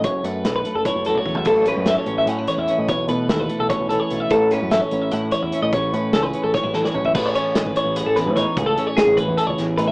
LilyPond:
<<
  \new Staff \with { instrumentName = "Clean electric guitar" } { \time 7/8 \key a \lydian \tempo 4 = 148 cis''8 b'8 a'16 b'8 a'16 cis''8 a'16 cis''8 e''16 | a'8 b'8 e''16 cis''8 e''16 fis''8 cis''16 e''8 dis''16 | cis''8 b'8 a'16 b'8 a'16 cis''8 a'16 cis''8 e''16 | a'8 b'8 e''16 cis''8 e''16 fis''8 cis''16 e''8 dis''16 |
cis''8 b'8 a'16 b'8 a'16 cis''8 a'16 cis''8 e''16 | b'16 cis''16 cis''8 dis''16 b'16 cis''8 b'16 a'16 b'8 cis''8 | r16 a'8 cis''16 gis'8 b'8 a'16 cis''8 r16 b'16 e''16 | }
  \new Staff \with { instrumentName = "Clean electric guitar" } { \time 7/8 \key a \lydian << { r8 a8 b'8 a8 e'4 a8~ | a8 cis'8 a'8 cis'8 cis'16 e'8. cis'8 | r8 a8 e'8 a8 cis'4 a8~ | a8 cis'8 a'8 cis'8 e'4 cis'8 |
r8 cis'8 gis'8 cis'8 cis'16 e'8. cis'8 | gis'8 cis'4. gis'4 dis'8 | gis'8 cis'4. gis'4 dis'8 | } \\ { fis,2~ fis,8 fis4 | a,2~ a,8 e4 | b,2~ b,8 e4 | a,2~ a,8 e4 |
a,2~ a,8 e4 | a,4. e4 e,4 | a,4. e4 e,4 | } >> }
  \new Staff \with { instrumentName = "Fingered electric bass" } { \clef bass \time 7/8 \key a \lydian fis,,8 fis,8 b,,8 r16 fis,,16 r16 fis,,8 r16 e,8 | a,,8. fis,8 r16 a,,8 a,8 r16 e,16 r16 a,16 | b,,8 b,8 dis,8 r16 b,,16 r16 b,,8 r16 b,,8 | a,,8. fis,8 r16 a,,8 a,8 r16 e,16 r16 a,16 |
a,,8 a,8 cis,8 r16 a,,16 r16 a,,8 r16 a,,8 | a,,8 r8. gis,,16 r16 a,,8 a,,8 a,8 r16 | cis,8 r8. a,,8 e,16 r16 cis,16 a,,8 a,8 | }
  \new DrumStaff \with { instrumentName = "Drums" } \drummode { \time 7/8 <hh bd>8 hh8 <hh sn>8 hh8 <hh bd>8 hh16 tommh16 bd16 tomfh16 | <cymc hh bd>8 <hh sn>8 <hh sn>8 hh8 hh8 hh8 hh8 | <hh bd>8 hh8 <hh sn>8 hh8 <hh bd>8 hh8 hh8 | <hh bd>8 <hh sn>8 <hh sn>8 hh8 hh8 hh8 hh8 |
<hh bd>8 hh8 <hh sn>8 hh8 <bd sn>16 tommh16 sn16 sn16 tomfh16 tomfh16 | <cymc bd>8 hh8 <hh sn>8 hh8 hh8 <hh sn>8 <hh bd sn>8 | <hh bd>8 hh8 <hh sn>8 <hh bd>8 hh8 <hh sn>8 hh8 | }
>>